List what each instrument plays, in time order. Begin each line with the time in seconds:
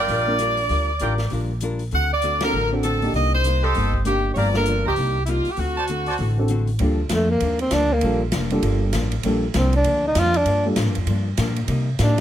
Already playing: trumpet section F4 A#4 D5 G5
0.00 saxophone section D5
0.08 upright bass A#1, hollow-body jazz guitar G3 D4 F4 A#4, open hi-hat
0.27 grand piano A#3 D4 F4 A#4
0.39 hollow-body jazz guitar G3 D4 F4 A#4, closed hi-hat
0.57 open hi-hat
0.69 upright bass D2, hollow-body jazz guitar G3 D4 F4 A#4, open hi-hat
0.99 upright bass A1, hollow-body jazz guitar G3 D4 F4 A#4, trumpet section F4 A#4 D5 G5, closed hi-hat
1.18 snare, open hi-hat
1.30 upright bass A#1, hollow-body jazz guitar G3 D4 F4, open hi-hat
1.34 hollow-body jazz guitar A#4
1.61 hollow-body jazz guitar G3 D4 F4 A#4, closed hi-hat
1.79 open hi-hat
1.91 upright bass D2, hollow-body jazz guitar D3 A3 C4 F#4, saxophone section F#5, open hi-hat
2.13 saxophone section D5
2.22 hollow-body jazz guitar D3 A3 C4 F#4, closed hi-hat
2.41 grand piano C4 D4 F#4 A4, saxophone section A#4, snare, ride
2.53 upright bass A1, hollow-body jazz guitar D3 A3 C4 F#4
2.72 grand piano C4 D4 F#4 A4
2.83 hollow-body jazz guitar D3 A3 C4 F#4, saxophone section A4, closed hi-hat
3.02 grand piano A#3 D4 D#4 G4, open hi-hat
3.13 upright bass C2, hollow-body jazz guitar C3 G3 A#3 D#4, saxophone section D#5, open hi-hat
3.35 saxophone section C5
3.44 hollow-body jazz guitar C3 G3 A#3 D#4, closed hi-hat
3.63 trumpet section G4 C5 D#5 C6, saxophone section A4
3.74 upright bass G1, hollow-body jazz guitar C3 G3 A#3 D#4, open hi-hat
3.94 kick
4.05 hollow-body jazz guitar C3 G3 A#3 D#4, grand piano A#3 D4 D#4 G4, saxophone section G4, closed hi-hat
4.34 upright bass G1, hollow-body jazz guitar G2 F3, trumpet section G4 D5 F5 A#5, saxophone section C#5 D5, open hi-hat
4.38 hollow-body jazz guitar A#3 D4
4.54 grand piano A#3 D4 F4 A4, saxophone section A#4, snare
4.66 hollow-body jazz guitar G2 F3 A#3 D4, closed hi-hat
4.85 upright bass C#2, trumpet section G4 C5 D#5 A#5, saxophone section G4
4.96 upright bass C2, hollow-body jazz guitar C3 G3 A#3 D#4, open hi-hat
5.25 hollow-body jazz guitar C3 G3 A#3, saxophone section E4, closed hi-hat
5.30 hollow-body jazz guitar D#4, saxophone section F4
5.45 muted upright bass stroke, open hi-hat
5.51 saxophone section G4
5.56 upright bass D2, hollow-body jazz guitar D3 A3 C4, saxophone section F#4, open hi-hat
5.61 hollow-body jazz guitar F#4
5.77 trumpet section F#4 C5 D5 A5
5.88 hollow-body jazz guitar D3 A3 C4, closed hi-hat
5.92 hollow-body jazz guitar F#4
6.06 trumpet section F#4 C5 D5 A5, open hi-hat
6.18 upright bass A1, hollow-body jazz guitar D3 A3 C4, open hi-hat
6.22 hollow-body jazz guitar F#4
6.38 grand piano C4 D4 F#4 A4
6.48 hollow-body jazz guitar D3 A3 C4 F#4, closed hi-hat
6.67 open hi-hat
6.79 upright bass D2, hollow-body jazz guitar G2 F3 A#3 D4, grand piano G3 A#3 D4 F4 A4, ride
7.09 upright bass F2, hollow-body jazz guitar G2 F3 A#3 D4, snare, hi-hat pedal, ride
7.14 tenor saxophone A3
7.31 tenor saxophone A#3
7.40 upright bass D#2, hollow-body jazz guitar G2 F3 A#3 D4, ride
7.59 tenor saxophone C4, ride
7.71 upright bass D2, hollow-body jazz guitar G2 F3 A#3 D4, tenor saxophone D4, snare, hi-hat pedal, ride
7.93 tenor saxophone A#3
8.01 upright bass A#1, hollow-body jazz guitar G2 F3 A#3 D4, grand piano G3 A#3 D4 F4 A4, ride
8.32 upright bass F1, hollow-body jazz guitar G2 F3 A#3 D4, snare, hi-hat pedal, ride
8.50 grand piano G3 A#3 D4 F4 A4, ride
8.62 upright bass G1, hollow-body jazz guitar G2 F3 A#3 D4, ride
8.93 upright bass A1, hollow-body jazz guitar G2 F3 A#3 D4, snare, hi-hat pedal, ride
9.12 ride
9.23 upright bass A#1, hollow-body jazz guitar G2 F3 A#3, grand piano G3 A#3 D4 F4 A4, ride
9.28 hollow-body jazz guitar D4
9.54 upright bass C2, hollow-body jazz guitar G2 F3 A#3 D4, tenor saxophone C4, snare, hi-hat pedal, ride
9.73 tenor saxophone D4, ride
9.84 upright bass D2, hollow-body jazz guitar G2 F3 A#3 D4, ride
10.08 tenor saxophone D#4
10.15 upright bass F2, hollow-body jazz guitar G2 F3 A#3 D4, snare, hi-hat pedal, ride
10.19 tenor saxophone F4
10.34 tenor saxophone D4, ride
10.46 upright bass G2, hollow-body jazz guitar G2 F3 A#3 D4, ride
10.65 grand piano G3 A#3 D4 F4 A4
10.76 hollow-body jazz guitar G2 F3 A#3 D4, upright bass A2, snare, hi-hat pedal, ride
10.86 upright bass G2
10.95 upright bass F2, ride
11.06 upright bass G2, hollow-body jazz guitar G2 F3 A#3 D4, ride
11.37 hollow-body jazz guitar G2 F3 A#3 D4, upright bass A#2, snare, hi-hat pedal, ride
11.56 ride
11.68 hollow-body jazz guitar C3 G3 A#3 D#4, upright bass C3, ride
11.99 upright bass A2, hollow-body jazz guitar C3 G3 A#3 D#4, tenor saxophone D4, snare, hi-hat pedal, ride